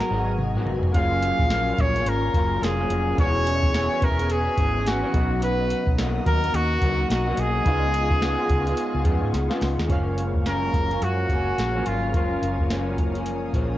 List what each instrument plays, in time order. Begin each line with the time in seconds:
Already playing: clean electric guitar F#3 B3 F#4, synth keys B3 D#4 F#4 A#4, string machine G#4 D#5 G#5 A#5, trumpet A#4
0.01 snare
0.11 fingered electric bass G#1, clean electric guitar D#3 F#3 B3 F#4
0.38 mid tom
0.55 clean electric guitar G#2 D#3 F#3 B3 F#4, mid tom
0.66 fingered electric bass F1, floor tom
0.83 floor tom
0.92 fingered electric bass F#1, clean electric guitar F#3 A#3 C#4, synth keys A#3 C#4 F4, string machine A#4 F5 C#6, trumpet F5, kick, closed hi-hat
0.96 clean electric guitar F4, synth keys G#4
1.23 closed hi-hat
1.39 fingered electric bass A#1, kick
1.50 clean electric guitar F#3 A#3 C#4 F4, snare, closed hi-hat
1.78 fingered electric bass A#1, trumpet C#5, kick, snare, closed hi-hat
1.95 clean electric guitar A#3 C#4 F4, closed hi-hat
2.06 fingered electric bass G#1, trumpet A#4, closed hi-hat
2.34 fingered electric bass F#1, clean electric guitar F#3 A#3 C#4 F4, kick, closed hi-hat
2.62 fingered electric bass F1, trumpet G#4, snare, closed hi-hat
2.80 clean electric guitar F#3 A#3 C#4 F4
2.90 fingered electric bass F1, closed hi-hat
3.16 fingered electric bass E1, clean electric guitar E3 B3 C#4, synth keys B3 C#4 F#4, string machine B4 E5 G#5 C#6, kick, closed hi-hat
3.20 clean electric guitar G#4, synth keys G#4, trumpet C#5
3.47 closed hi-hat
3.63 kick
3.74 clean electric guitar E3 B3 C#4 G#4, snare, closed hi-hat
4.02 fingered electric bass E1, trumpet A#4, kick, closed hi-hat
4.19 clean electric guitar B3 C#4 G#4, closed hi-hat
4.30 trumpet G#4, closed hi-hat
4.57 fingered electric bass G#1, clean electric guitar E3 B3 C#4 G#4, kick, closed hi-hat
4.87 trumpet F#4, snare, closed hi-hat
5.02 clean electric guitar E3 B3 C#4 G#4
5.13 fingered electric bass B1, clean electric guitar B2 F#3 D#4 F#4, synth keys B3 C#4 D#4, string machine D#5 F#5 A#5 D#6, kick, closed hi-hat
5.17 synth keys F#4
5.42 trumpet B4, closed hi-hat
5.70 closed hi-hat
5.87 fingered electric bass B1, kick
5.98 clean electric guitar B2 F#3 A#3 D#4 F#4, snare, closed hi-hat
6.26 fingered electric bass D#2, trumpet A#4, kick, snare, closed hi-hat
6.43 clean electric guitar A#3 D#4 F#4, closed hi-hat
6.53 fingered electric bass D#2, trumpet F#4, closed hi-hat
6.81 fingered electric bass C#2, clean electric guitar F#3 A#3 D#4 F#4, kick, closed hi-hat
7.10 fingered electric bass B1, trumpet F#4, snare, closed hi-hat
7.27 clean electric guitar B2 F#3 A#3 D#4 F#4
7.37 fingered electric bass B1, trumpet G#4, closed hi-hat
7.63 fingered electric bass C#2, clean electric guitar C#3 G#3 B3 F4, synth keys G#3 B3 D#4, string machine F5 G#5 C#6, kick, closed hi-hat
7.68 synth keys F4
7.94 closed hi-hat
8.10 kick
8.21 clean electric guitar C#3 G#3 B3 F4, snare, closed hi-hat
8.49 fingered electric bass C#2, kick, closed hi-hat
8.66 clean electric guitar G#3 B3 F4, closed hi-hat
8.77 closed hi-hat
8.94 fingered electric bass C#2
9.04 fingered electric bass F2, clean electric guitar C#3 G#3 B3 F4, kick, closed hi-hat
9.22 fingered electric bass G#2
9.34 fingered electric bass C#2, snare, closed hi-hat
9.50 clean electric guitar C#3 G#3 B3 F4, snare
9.61 fingered electric bass C#2, snare, open hi-hat
9.78 fingered electric bass D#2, snare
9.87 fingered electric bass F#1, clean electric guitar C#3 F3 A#3 C#4, synth keys G#3 A#3 C#4, string machine A#4 C#5 F5 C#6, kick, closed hi-hat
9.92 synth keys F5
10.18 closed hi-hat
10.34 kick
10.45 clean electric guitar F#2 C#3 F3 A#3 C#4, trumpet A#4, snare, closed hi-hat
10.73 fingered electric bass F#1, kick, snare, closed hi-hat
10.90 clean electric guitar F3 A#3 C#4, closed hi-hat
11.02 fingered electric bass F#2, trumpet F#4, closed hi-hat
11.29 fingered electric bass F#1, clean electric guitar C#3 A#3, kick, closed hi-hat
11.33 clean electric guitar C#4
11.58 fingered electric bass A#1, snare, closed hi-hat
11.76 clean electric guitar F#2 C#3 F3 A#3 C#4
11.86 fingered electric bass G#1, trumpet F4, closed hi-hat
12.11 fingered electric bass F#1, clean electric guitar C#3, synth keys G#3 A#3 C#4, string machine D#6, kick, closed hi-hat
12.15 clean electric guitar F3 A#3 C#4, synth keys F#3, trumpet F4
12.42 fingered electric bass F#1, closed hi-hat
12.59 kick
12.69 clean electric guitar F#2 C#3 F3 A#3 C#4, snare, closed hi-hat
12.98 kick, closed hi-hat
13.14 clean electric guitar F3 A#3 C#4, closed hi-hat
13.26 closed hi-hat
13.53 fingered electric bass A#1, clean electric guitar C#3 F3 A#3 C#4, kick, closed hi-hat